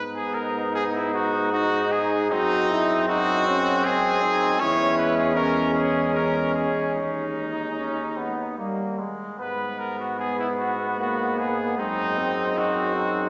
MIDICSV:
0, 0, Header, 1, 6, 480
1, 0, Start_track
1, 0, Key_signature, 5, "minor"
1, 0, Tempo, 790514
1, 1403, Time_signature, 3, 2, 24, 8
1, 1404, Tempo, 768246
1, 3804, Tempo, 810811
1, 5724, Tempo, 789474
1, 8092, End_track
2, 0, Start_track
2, 0, Title_t, "Trumpet"
2, 0, Program_c, 0, 56
2, 90, Note_on_c, 0, 68, 99
2, 208, Note_on_c, 0, 70, 92
2, 217, Note_off_c, 0, 68, 0
2, 448, Note_off_c, 0, 70, 0
2, 457, Note_on_c, 0, 68, 104
2, 509, Note_off_c, 0, 68, 0
2, 572, Note_on_c, 0, 64, 90
2, 689, Note_off_c, 0, 64, 0
2, 691, Note_on_c, 0, 66, 98
2, 922, Note_off_c, 0, 66, 0
2, 925, Note_on_c, 0, 66, 113
2, 1165, Note_on_c, 0, 68, 97
2, 1174, Note_off_c, 0, 66, 0
2, 1395, Note_off_c, 0, 68, 0
2, 1399, Note_on_c, 0, 63, 127
2, 1876, Note_off_c, 0, 63, 0
2, 1886, Note_on_c, 0, 66, 127
2, 2363, Note_on_c, 0, 68, 127
2, 2372, Note_off_c, 0, 66, 0
2, 2835, Note_on_c, 0, 73, 127
2, 2844, Note_off_c, 0, 68, 0
2, 3065, Note_off_c, 0, 73, 0
2, 3069, Note_on_c, 0, 71, 108
2, 3187, Note_off_c, 0, 71, 0
2, 3191, Note_on_c, 0, 68, 92
2, 3300, Note_off_c, 0, 68, 0
2, 3304, Note_on_c, 0, 70, 115
2, 3543, Note_off_c, 0, 70, 0
2, 3547, Note_on_c, 0, 68, 104
2, 3793, Note_off_c, 0, 68, 0
2, 3800, Note_on_c, 0, 70, 104
2, 4030, Note_off_c, 0, 70, 0
2, 4034, Note_on_c, 0, 68, 93
2, 4273, Note_off_c, 0, 68, 0
2, 4279, Note_on_c, 0, 63, 83
2, 5459, Note_off_c, 0, 63, 0
2, 5725, Note_on_c, 0, 71, 90
2, 5966, Note_on_c, 0, 70, 77
2, 5975, Note_off_c, 0, 71, 0
2, 6084, Note_off_c, 0, 70, 0
2, 6088, Note_on_c, 0, 66, 72
2, 6203, Note_off_c, 0, 66, 0
2, 6206, Note_on_c, 0, 68, 88
2, 6325, Note_off_c, 0, 68, 0
2, 6330, Note_on_c, 0, 64, 81
2, 6384, Note_off_c, 0, 64, 0
2, 6450, Note_on_c, 0, 66, 81
2, 6688, Note_off_c, 0, 66, 0
2, 6693, Note_on_c, 0, 66, 88
2, 6935, Note_on_c, 0, 68, 81
2, 6944, Note_off_c, 0, 66, 0
2, 7170, Note_off_c, 0, 68, 0
2, 7174, Note_on_c, 0, 63, 112
2, 7661, Note_on_c, 0, 66, 106
2, 7670, Note_off_c, 0, 63, 0
2, 8092, Note_off_c, 0, 66, 0
2, 8092, End_track
3, 0, Start_track
3, 0, Title_t, "Trombone"
3, 0, Program_c, 1, 57
3, 0, Note_on_c, 1, 59, 78
3, 907, Note_off_c, 1, 59, 0
3, 930, Note_on_c, 1, 63, 83
3, 1394, Note_off_c, 1, 63, 0
3, 1405, Note_on_c, 1, 66, 91
3, 1650, Note_on_c, 1, 64, 104
3, 1660, Note_off_c, 1, 66, 0
3, 1889, Note_off_c, 1, 64, 0
3, 1892, Note_on_c, 1, 63, 108
3, 2126, Note_off_c, 1, 63, 0
3, 2131, Note_on_c, 1, 61, 97
3, 2374, Note_on_c, 1, 60, 87
3, 2383, Note_off_c, 1, 61, 0
3, 2610, Note_on_c, 1, 63, 93
3, 2619, Note_off_c, 1, 60, 0
3, 2836, Note_off_c, 1, 63, 0
3, 2839, Note_on_c, 1, 64, 94
3, 3319, Note_on_c, 1, 61, 87
3, 3328, Note_off_c, 1, 64, 0
3, 3805, Note_off_c, 1, 61, 0
3, 3808, Note_on_c, 1, 61, 71
3, 4108, Note_off_c, 1, 61, 0
3, 4285, Note_on_c, 1, 63, 63
3, 5463, Note_off_c, 1, 63, 0
3, 6207, Note_on_c, 1, 59, 72
3, 6668, Note_off_c, 1, 59, 0
3, 6689, Note_on_c, 1, 58, 72
3, 7180, Note_on_c, 1, 56, 71
3, 7189, Note_off_c, 1, 58, 0
3, 7417, Note_on_c, 1, 60, 76
3, 7426, Note_off_c, 1, 56, 0
3, 7648, Note_off_c, 1, 60, 0
3, 7652, Note_on_c, 1, 63, 83
3, 7882, Note_off_c, 1, 63, 0
3, 7885, Note_on_c, 1, 63, 86
3, 8092, Note_off_c, 1, 63, 0
3, 8092, End_track
4, 0, Start_track
4, 0, Title_t, "Flugelhorn"
4, 0, Program_c, 2, 56
4, 0, Note_on_c, 2, 63, 75
4, 1404, Note_on_c, 2, 60, 87
4, 1414, Note_off_c, 2, 63, 0
4, 2835, Note_on_c, 2, 61, 93
4, 2844, Note_off_c, 2, 60, 0
4, 4590, Note_off_c, 2, 61, 0
4, 4762, Note_on_c, 2, 61, 66
4, 4997, Note_on_c, 2, 59, 54
4, 5006, Note_off_c, 2, 61, 0
4, 5232, Note_off_c, 2, 59, 0
4, 5235, Note_on_c, 2, 58, 54
4, 5479, Note_on_c, 2, 56, 47
4, 5488, Note_off_c, 2, 58, 0
4, 5715, Note_off_c, 2, 56, 0
4, 5718, Note_on_c, 2, 59, 65
4, 7180, Note_on_c, 2, 60, 70
4, 7189, Note_off_c, 2, 59, 0
4, 8092, Note_off_c, 2, 60, 0
4, 8092, End_track
5, 0, Start_track
5, 0, Title_t, "French horn"
5, 0, Program_c, 3, 60
5, 0, Note_on_c, 3, 56, 78
5, 2813, Note_off_c, 3, 56, 0
5, 2838, Note_on_c, 3, 56, 95
5, 5049, Note_off_c, 3, 56, 0
5, 5242, Note_on_c, 3, 55, 53
5, 5510, Note_off_c, 3, 55, 0
5, 5722, Note_on_c, 3, 56, 64
5, 8092, Note_off_c, 3, 56, 0
5, 8092, End_track
6, 0, Start_track
6, 0, Title_t, "Tuba"
6, 0, Program_c, 4, 58
6, 0, Note_on_c, 4, 44, 80
6, 1379, Note_off_c, 4, 44, 0
6, 1406, Note_on_c, 4, 42, 88
6, 2813, Note_off_c, 4, 42, 0
6, 2839, Note_on_c, 4, 40, 102
6, 4087, Note_off_c, 4, 40, 0
6, 4282, Note_on_c, 4, 39, 60
6, 5507, Note_off_c, 4, 39, 0
6, 5723, Note_on_c, 4, 44, 66
6, 7153, Note_off_c, 4, 44, 0
6, 7179, Note_on_c, 4, 42, 76
6, 8092, Note_off_c, 4, 42, 0
6, 8092, End_track
0, 0, End_of_file